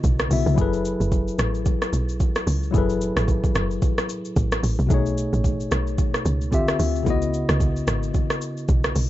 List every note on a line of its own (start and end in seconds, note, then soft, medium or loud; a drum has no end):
0.00 0.28 B1 loud
0.00 0.25 C#3 medium
0.00 0.26 B3 medium
0.00 0.27 E4 medium
0.00 0.28 F#4 medium
0.00 0.29 D#5 medium
0.00 kick loud
0.00 shaker medium
0.19 cross-stick loud
0.19 shaker medium
0.29 0.45 B1 medium
0.29 0.57 C#3 medium
0.29 0.57 B3 medium
0.29 0.55 E4 medium
0.29 0.58 F#4 medium
0.29 0.59 E5 medium
0.29 open hi-hat medium
0.29 shaker medium
0.46 0.56 C#2 loud
0.46 shaker soft
0.54 0.96 F#1 loud
0.54 2.68 F#3 medium
0.54 2.69 E4 medium
0.54 2.70 G#4 medium
0.54 kick loud
0.54 shaker medium
0.60 2.71 A4 medium
0.60 2.72 B4 medium
0.73 shaker medium
0.85 shaker medium
1.00 1.35 F#1 loud
1.00 shaker medium
1.12 kick loud
1.12 shaker medium
1.28 shaker medium
1.39 1.77 A1 loud
1.39 cross-stick loud
1.39 shaker medium
1.54 shaker soft
1.66 kick loud
1.66 shaker medium
1.82 cross-stick medium
1.82 shaker medium
1.93 2.41 B1 medium
1.93 shaker loud
2.09 shaker medium
2.20 kick loud
2.20 shaker medium
2.35 cross-stick medium
2.35 shaker medium
2.47 2.71 C#2 medium
2.47 open hi-hat medium
2.47 shaker medium
2.63 shaker soft
2.71 3.12 F#1 loud
2.71 4.85 F#3 medium
2.71 4.85 E4 medium
2.71 4.86 G#4 medium
2.71 kick loud
2.71 shaker medium
2.76 4.87 A4 medium
2.76 4.88 B4 medium
2.90 shaker medium
3.01 shaker medium
3.17 3.51 A1 loud
3.17 cross-stick loud
3.17 shaker medium
3.28 kick medium
3.28 shaker medium
3.44 kick loud
3.44 shaker medium
3.55 3.79 F#1 medium
3.55 cross-stick loud
3.55 shaker medium
3.71 shaker soft
3.82 kick loud
3.82 shaker medium
3.98 cross-stick loud
3.98 shaker medium
4.09 shaker loud
4.25 shaker medium
4.36 4.60 A1 loud
4.36 kick loud
4.36 shaker medium
4.52 cross-stick loud
4.52 shaker medium
4.63 4.77 A1 loud
4.63 open hi-hat medium
4.63 shaker medium
4.79 4.89 B1 loud
4.79 shaker soft
4.87 5.28 B1 loud
4.87 6.47 B2 medium
4.87 6.48 A3 medium
4.87 6.49 D#4 medium
4.87 kick loud
4.87 shaker medium
4.92 6.50 G#4 medium
4.92 6.51 C#5 medium
5.06 shaker medium
5.18 shaker medium
5.33 5.67 A1 loud
5.33 shaker medium
5.44 kick loud
5.44 shaker medium
5.60 shaker medium
5.71 6.09 B1 medium
5.71 cross-stick loud
5.71 shaker medium
5.87 shaker soft
5.98 kick loud
5.98 shaker medium
6.14 cross-stick medium
6.14 shaker medium
6.26 6.74 C#2 loud
6.26 shaker loud
6.41 shaker medium
6.51 7.06 D3 medium
6.51 7.06 C4 medium
6.51 7.07 F4 medium
6.51 7.07 G4 medium
6.51 7.07 E5 medium
6.51 kick loud
6.51 shaker medium
6.68 cross-stick loud
6.68 shaker medium
6.79 7.03 D2 medium
6.79 open hi-hat medium
6.79 shaker medium
6.96 shaker soft
7.03 7.45 C#2 loud
7.03 9.10 C#3 medium
7.03 9.10 B3 medium
7.03 9.10 E4 medium
7.03 kick loud
7.03 shaker medium
7.08 9.10 F#4 medium
7.08 9.10 D#5 medium
7.22 shaker medium
7.34 shaker medium
7.49 7.83 C#2 medium
7.49 cross-stick loud
7.49 shaker medium
7.60 kick loud
7.60 shaker medium
7.76 shaker medium
7.87 8.12 G#1 loud
7.87 cross-stick loud
7.87 shaker medium
8.03 shaker soft
8.14 kick loud
8.14 shaker medium
8.30 cross-stick loud
8.30 shaker medium
8.41 shaker loud
8.57 shaker medium
8.68 8.93 B1 medium
8.68 kick loud
8.68 shaker medium
8.84 cross-stick loud
8.84 shaker medium
8.96 9.10 B1 medium
8.96 open hi-hat medium
8.96 shaker medium